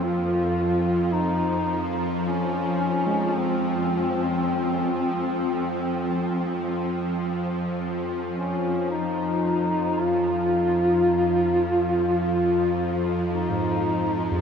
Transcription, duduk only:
0.03 1.15 F4 loud
1.14 1.97 D#4 loud
2.25 3.40 C#4 loud
3.38 7.25 C4 medium
8.35 8.87 C#4 medium
8.91 10.02 D#4 loud
10.01 12.20 F4 loud
12.21 13.01 F4 loud
13.33 14.41 D#4 medium

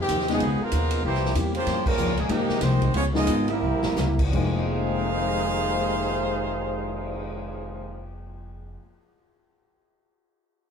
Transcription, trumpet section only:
0.00 0.29 G#3 medium
0.00 0.29 C4 medium
0.00 0.28 G4 medium
0.32 0.60 B3 medium
0.32 0.60 D#4 medium
0.32 0.60 G#4 medium
0.63 1.05 G#3 medium
0.63 1.05 D#4 medium
0.63 1.05 F4 loud
0.63 1.05 A#4 medium
1.05 1.34 A#3 medium
1.05 1.34 E4 loud
1.05 1.33 G4 loud
1.05 1.34 C5 loud
1.56 1.85 A#3 medium
1.56 1.85 F4 medium
1.56 1.85 G4 medium
1.56 1.85 C5 loud
1.87 2.18 G3 medium
1.87 2.18 C#4 medium
1.87 2.18 F4 loud
1.87 2.18 A#4 loud
2.19 2.30 A#3 medium
2.19 2.30 C#4 medium
2.19 2.30 G#4 medium
2.30 2.61 G#3 medium
2.30 2.61 D#4 medium
2.30 2.61 G4 loud
2.30 2.62 A#4 loud
2.62 2.94 G#3 medium
2.62 2.94 D#4 medium
2.62 2.95 G4 medium
2.62 2.95 C5 loud
2.95 3.04 B3 loud
2.95 3.04 F4 loud
2.95 3.05 G#4 loud
2.95 3.05 C#5 loud
3.15 3.47 B3 medium
3.15 3.46 F4 loud
3.15 3.47 G#4 medium
3.15 3.47 D#5 loud
3.49 4.20 C4 medium
3.49 4.19 G4 medium
3.49 4.20 A#4 medium
3.49 4.20 E5 medium
4.34 8.06 D#4 medium
4.34 8.05 G#4 loud
4.34 8.05 C5 loud
4.34 8.06 F5 loud

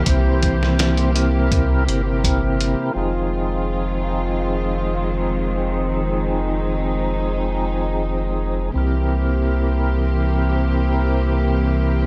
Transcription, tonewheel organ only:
0.04 1.10 C3 medium
0.04 1.11 C4 medium
0.04 1.12 E4 medium
0.10 1.13 C5 loud
1.13 1.83 C3 medium
1.13 1.84 C4 medium
1.13 1.84 E4 medium
1.13 1.84 A#4 medium
1.86 2.01 C3 medium
1.86 2.01 C4 medium
1.86 2.02 E4 medium
1.86 2.02 A#4 medium
2.04 2.91 C3 medium
2.04 2.91 C4 medium
2.04 2.92 E4 medium
2.09 2.93 A#4 medium
2.93 8.69 F3 medium
2.93 8.70 C4 medium
2.93 8.71 D#4 medium
2.98 8.71 G#4 medium
8.72 12.06 C3 medium
8.72 12.06 C4 medium
8.72 12.06 E4 medium
8.77 12.06 A#4 medium

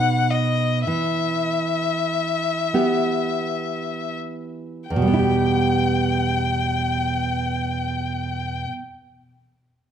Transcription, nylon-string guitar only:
0.00 0.83 B2 soft
0.00 0.83 B3 soft
0.00 0.83 D#4 soft
0.87 4.87 E3 soft
2.74 4.87 B3 soft
2.74 4.88 G4 soft
4.90 8.64 E2 soft
4.96 8.70 B2 soft
5.02 8.76 G3 soft
5.07 8.82 B3 soft
5.14 5.19 E4 soft
5.19 8.93 G4 soft

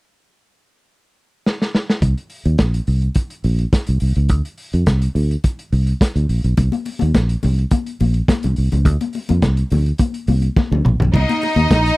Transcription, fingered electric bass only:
2.02 2.13 C2 medium
2.46 2.55 D#2 medium
2.59 2.79 A#1 medium
2.88 3.07 C2 medium
3.44 3.64 A#1 medium
3.89 3.98 C2 medium
4.02 4.12 C2 medium
4.17 4.30 C#2 medium
4.30 4.40 D2 medium
4.74 4.83 F2 medium
4.87 5.07 C2 medium
5.15 5.35 D2 medium
5.73 5.92 C2 medium
6.16 6.25 D2 medium
6.29 6.40 A#1 medium
6.44 6.54 B1 medium
6.58 6.68 C2 medium
7.02 7.11 D#2 medium
7.15 7.34 A#1 medium
7.44 7.63 C2 medium
8.01 8.20 A#1 medium
8.44 8.53 C2 medium
8.58 8.68 C2 medium
8.73 8.85 C#2 medium
8.85 8.96 D2 loud
9.30 9.39 F2 medium
9.43 9.62 C2 medium
9.72 9.91 D2 medium
10.28 10.48 C2 medium
10.71 10.81 D2 medium
10.85 10.95 A#1 medium
11.00 11.09 B1 medium
11.14 11.24 C2 loud
11.56 11.65 D#2 medium
11.71 11.90 A#1 medium

